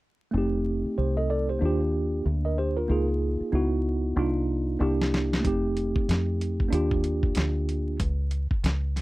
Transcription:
0.31 fingered electric bass F1, tine electric piano A3 C4
0.35 tine electric piano D#4 G4
0.85 muted fingered electric bass stroke
0.98 fingered electric bass C2, tine electric piano G4 C5
1.17 tine electric piano A4 D#5
1.30 tine electric piano A4 D5
1.49 tine electric piano G4 C5
1.59 fingered electric bass D#2, tine electric piano A#3 D4
1.63 tine electric piano F4 G4
2.26 fingered electric bass D2
2.45 tine electric piano A#4 D#5
2.58 tine electric piano G4 C5
2.77 tine electric piano F4 A#4
2.88 fingered electric bass C#2, tine electric piano A#3 D#4 F4 G#4
3.40 muted fingered electric bass stroke
3.52 fingered electric bass C#2, tine electric piano B3 D#4 E4 F#4
4.16 fingered electric bass C2, tine electric piano A#3 D4 D#4 F4
4.79 fingered electric bass C2, tine electric piano A#3 D4 E4 G4
5.02 snare
5.14 snare
5.33 snare
5.40 tine electric piano A3 C4
5.45 fingered electric bass F1, tine electric piano D#4 G4, kick, closed hi-hat
5.77 closed hi-hat
5.96 muted fingered electric bass stroke, kick
6.09 fingered electric bass F2, snare, closed hi-hat
6.41 closed hi-hat
6.60 kick
6.68 fingered electric bass D#2, tine electric piano A#3 D4
6.73 tine electric piano F4 G4, closed hi-hat
6.91 kick
7.04 closed hi-hat
7.23 kick
7.35 fingered electric bass D2, snare, closed hi-hat
7.69 closed hi-hat
8.00 fingered electric bass C#2, kick, closed hi-hat
8.31 closed hi-hat
8.51 muted fingered electric bass stroke, kick
8.64 fingered electric bass C#2, snare, closed hi-hat
8.96 snare, closed hi-hat

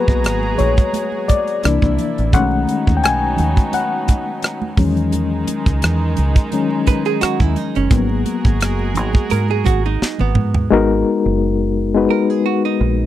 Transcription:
Already playing: reed electric piano F#3 A#3 B3 B4, string section G#3 F#4 G#4 A#5
0.08 fingered electric bass B1, kick
0.24 fingered electric bass G#1, cross-stick, closed hi-hat, muted conga
0.43 muted conga
0.58 fingered electric bass A#1, reed electric piano C#5, closed hi-hat, low conga
0.77 kick, closed hi-hat, high conga
0.93 closed hi-hat, muted conga, high conga
1.12 muted conga
1.28 reed electric piano D5, kick, closed hi-hat, high conga
1.47 closed hi-hat
1.63 fingered electric bass C2, string section C3 A#3 D4 E4, reed electric piano E3 A#3 D4, cross-stick, closed hi-hat, muted conga
1.82 fingered electric bass C2, kick, muted conga, high conga
1.98 closed hi-hat, low conga
2.18 fingered electric bass A1, closed hi-hat
2.32 fingered electric bass B1, reed electric piano D#3 G#3 A3 C#4 F#5, string section F#3 B3 D#4, kick, closed hi-hat, muted conga, low conga
2.51 muted conga
2.67 closed hi-hat, high conga
2.87 fingered electric bass D#2, kick
2.97 reed electric piano G5
3.04 fingered electric bass B1, reed electric piano G#5, cross-stick, closed hi-hat, muted conga
3.37 fingered electric bass D#2, closed hi-hat, low conga
3.56 kick, closed hi-hat, high conga
3.73 reed electric piano F#5, closed hi-hat, high conga
4.08 kick, closed hi-hat, high conga
4.42 cross-stick, closed hi-hat, muted conga
4.62 muted conga, high conga
4.77 fingered electric bass E2, string section D#3 G#3 D#4, reed electric piano D#3 F#3 G#3 C#4, kick, open hi-hat, low conga
4.97 closed hi-hat
5.12 closed hi-hat, low conga
5.47 closed hi-hat, high conga
5.66 fingered electric bass C#2, kick, closed hi-hat
5.82 fingered electric bass E2, cross-stick, closed hi-hat, muted conga
6.16 fingered electric bass C#2, closed hi-hat, low conga
6.35 kick, closed hi-hat, high conga
6.52 reed electric piano D#3 F#3 G#3 C#4, closed hi-hat, high conga
6.71 muted conga
6.86 hollow-body jazz guitar B4, kick, closed hi-hat, high conga
7.05 hollow-body jazz guitar G#4, closed hi-hat
7.21 hollow-body jazz guitar F#4, muted fingered electric bass stroke, cross-stick, closed hi-hat, muted conga
7.40 fingered electric bass D#2, hollow-body jazz guitar E4, kick, muted conga, high conga
7.56 hollow-body jazz guitar D#4, closed hi-hat, low conga
7.75 fingered electric bass F#1, hollow-body jazz guitar C#4, closed hi-hat
7.90 fingered electric bass G#1, reed electric piano F#3 A#3 B3, string section G#3 F#4 G#4 A#4, kick, closed hi-hat, low conga
8.09 muted conga
8.25 closed hi-hat, high conga
8.45 fingered electric bass G#1, kick
8.61 fingered electric bass F#1, cross-stick, closed hi-hat, muted conga
8.79 muted conga
8.94 fingered electric bass G#1, closed hi-hat, low conga
9.13 kick, high conga
9.30 fingered electric bass G#2, hollow-body jazz guitar A#4, closed hi-hat, muted conga, high conga
9.49 hollow-body jazz guitar G#4, muted conga
9.64 fingered electric bass G#1, hollow-body jazz guitar F#4, kick, closed hi-hat, high conga
9.86 hollow-body jazz guitar D#4
10.02 muted fingered electric bass stroke, snare
10.19 fingered electric bass G#1, hollow-body jazz guitar B3, high tom, high conga
10.35 fingered electric bass G#2, mid tom, low conga
10.54 floor tom
10.71 fingered electric bass G#1, reed electric piano G#3 B3 D#4 F#4 A#4
11.26 fingered electric bass F#1
11.94 reed electric piano G#3 B3 D#4 F#4 B4
12.10 hollow-body jazz guitar A#4
12.30 hollow-body jazz guitar G#4
12.46 hollow-body jazz guitar F#4
12.65 hollow-body jazz guitar D#4
12.81 fingered electric bass A#1

